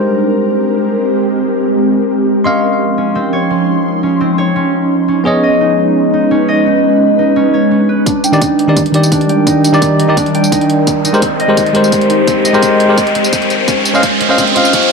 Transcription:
Already playing: tine electric piano G#3 G4 A#4 C5, ambient pad G#3 C4 G4 A#4
2.44 ambient pad F3 C#4 D#4 C6, harp C#4, tine electric piano D#5 F5 C6
2.98 harp C#4
3.15 harp C4
3.33 harp C#5
3.50 harp C#4
4.03 harp C#4
4.21 harp C4
4.38 harp C#5
4.56 harp C#4
5.08 harp C#4
5.24 ambient pad G#3 B4, tine electric piano B3 G#4 C#5 D#5, harp C#4
5.43 harp D#5
5.61 harp D#4
6.14 harp D#4
6.31 harp C#4
6.48 harp D#5
6.66 harp D#4
7.19 harp D#4
7.36 harp C#4
7.54 harp C#5
7.71 harp C#4
7.89 harp B4
8.06 ambient pad D#3 G3 A#4 D5, harp D4, kick, closed hi-hat, tambourine, riser
8.24 harp G5, closed hi-hat, tambourine
8.32 tine electric piano D#3 D#4 G4 D5, tambourine
8.41 harp D#4, kick, closed hi-hat, tambourine
8.59 closed hi-hat
8.68 tine electric piano D#3 D#4 G4 D5
8.77 kick, closed hi-hat, tambourine
8.86 closed hi-hat
8.92 tine electric piano D#3 G4 D5, harp D#4, closed hi-hat
9.03 tambourine
9.12 harp D4, kick, closed hi-hat, tambourine
9.21 closed hi-hat
9.29 harp G5, closed hi-hat
9.47 harp D#4, kick, closed hi-hat, tambourine
9.64 closed hi-hat, tambourine
9.73 tine electric piano D#3 D#4 G4 D5, tambourine
9.82 kick, closed hi-hat, tambourine
9.99 harp D#4, closed hi-hat
10.08 tine electric piano D#3 D#4 G4 D5
10.17 harp D4, kick, closed hi-hat, tambourine
10.26 closed hi-hat
10.34 harp G5, closed hi-hat
10.44 tambourine
10.52 harp D#4, kick, closed hi-hat, tambourine
10.61 closed hi-hat
10.70 closed hi-hat
10.87 ambient pad G#3 G4 C5, kick, closed hi-hat, tambourine
11.05 harp D#4, closed hi-hat, tambourine
11.13 tine electric piano G#3 G4 A#4 C5, tambourine
11.22 harp C4, kick, closed hi-hat, tambourine
11.40 harp D#5, closed hi-hat
11.48 tine electric piano G#3 G4 A#4 C5
11.57 harp D#4, kick, closed hi-hat, tambourine
11.66 closed hi-hat
11.73 tine electric piano G#3 G4 A#4 C5, closed hi-hat
11.84 tambourine
11.92 kick, closed hi-hat, tambourine
12.01 closed hi-hat
12.10 harp D#4, closed hi-hat
12.27 harp C4, kick, closed hi-hat, tambourine
12.45 harp D#5, closed hi-hat, tambourine
12.53 tine electric piano G#3 G4 A#4 C5, tambourine
12.62 harp D#4, kick, closed hi-hat, tambourine
12.80 closed hi-hat
12.89 tine electric piano G#3 G4 A#4 C5
12.98 kick, closed hi-hat, tambourine
13.07 closed hi-hat
13.15 harp C4, closed hi-hat
13.24 tambourine
13.33 harp C5, kick, closed hi-hat, tambourine
13.42 closed hi-hat
13.50 harp C5, closed hi-hat, tambourine
13.68 harp C#4, ambient pad C#4 F4 C5 D#5, kick, closed hi-hat, tambourine
13.85 closed hi-hat, tambourine
13.94 tine electric piano C#4 C5 D#5 F5, tambourine
14.03 kick, closed hi-hat, tambourine
14.21 harp C#4, closed hi-hat
14.29 tine electric piano C#4 C5 D#5 F5
14.38 harp C4, kick, closed hi-hat, tambourine
14.47 closed hi-hat
14.55 harp F4, tine electric piano C5 D#5 F5, closed hi-hat
14.65 tambourine
14.73 harp C#4, kick, closed hi-hat, tambourine
14.83 closed hi-hat

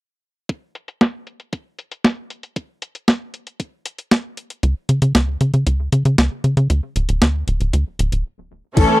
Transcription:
0.49 kick, closed hi-hat
0.75 closed hi-hat
0.88 closed hi-hat
1.01 kick, snare, closed hi-hat
1.27 closed hi-hat
1.40 closed hi-hat
1.53 kick, closed hi-hat
1.79 closed hi-hat
1.92 closed hi-hat
2.04 kick, snare, closed hi-hat
2.30 closed hi-hat
2.43 closed hi-hat
2.56 kick, closed hi-hat
2.82 closed hi-hat
2.95 closed hi-hat
3.08 kick, snare, closed hi-hat
3.34 closed hi-hat
3.47 closed hi-hat
3.60 kick, closed hi-hat
3.85 closed hi-hat
3.98 closed hi-hat
4.11 kick, snare, closed hi-hat
4.37 closed hi-hat
4.50 closed hi-hat
4.63 analog synth bass C#2, kick, closed hi-hat
4.89 analog synth bass C#3, closed hi-hat
5.02 analog synth bass C#3, closed hi-hat
5.15 analog synth bass C#2, kick, snare, closed hi-hat
5.41 analog synth bass C#3, closed hi-hat
5.54 analog synth bass C#3, closed hi-hat
5.67 analog synth bass C#2, kick, closed hi-hat
5.92 analog synth bass C#3, closed hi-hat
6.05 analog synth bass C#3, closed hi-hat
6.18 analog synth bass C#2, kick, snare, closed hi-hat
6.44 analog synth bass C#3, closed hi-hat
6.57 analog synth bass C#3, closed hi-hat
6.70 analog synth bass D2, kick, closed hi-hat
6.96 analog synth bass D1, closed hi-hat
7.09 analog synth bass D1, closed hi-hat
7.22 analog synth bass D2, kick, snare, closed hi-hat
7.47 analog synth bass D1, closed hi-hat
7.60 analog synth bass D1, closed hi-hat
7.73 analog synth bass D2, kick, closed hi-hat
7.99 analog synth bass D1, closed hi-hat
8.12 analog synth bass D1, closed hi-hat
8.77 analog synth bass A1, string section E3 A3 C#4 A4, synth arpeggio sound E4, kick, closed hi-hat, crash
8.90 synth arpeggio sound C#4

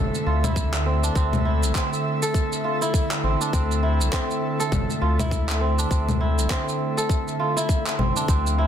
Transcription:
Already playing: analog synth pad D3 A3 A4 E5, kora C4 D4 E4 A4
0.15 shaker
0.26 analog synth bass D2, kora F4
0.44 kora E4, low conga, shaker
0.56 kick, shaker
0.74 clap, shaker
0.86 kora C4
1.03 kora D4, shaker
1.15 analog synth bass D2, kora C4, kick, shaker
1.33 low conga, shaker
1.45 kora E4
1.63 analog synth bass C2, shaker
1.75 kora C4, kick, clap, shaker
1.93 shaker
2.22 kora A4, shaker
2.34 kick, shaker
2.53 shaker
2.64 kora F4
2.82 kora E4, shaker
2.94 kick, shaker
3.11 clap, shaker
3.23 analog synth bass A1, kora C4
3.41 kora D4, shaker
3.53 analog synth bass D2, kora C4, kick, shaker
3.72 shaker
3.83 kora E4
4.00 analog synth bass C2, shaker
4.12 kora C4, kick, clap, shaker
4.31 shaker
4.60 kora A4, shaker
4.72 analog synth bass A1, kick, low conga, shaker
4.90 shaker
5.02 analog synth bass D2, kora F4
5.19 kora E4, low conga, shaker
5.31 kick, shaker
5.49 clap, shaker
5.61 kora C4
5.78 kora D4, shaker
5.91 analog synth bass D2, kora C4, kick, shaker
6.09 low conga, shaker
6.21 kora E4
6.38 analog synth bass C2, shaker
6.50 kora C4, kick, clap, shaker
6.69 shaker
6.97 kora A4, shaker
7.09 kick, shaker
7.28 shaker
7.40 kora F4
7.57 kora E4, shaker
7.69 kick, shaker
7.87 clap, shaker
7.99 analog synth bass A1, kora C4, low conga
8.16 kora D4, shaker
8.28 analog synth bass D2, analog synth pad D3 F3 A3 F5, kora C4, kick, shaker
8.47 shaker
8.58 kora E4

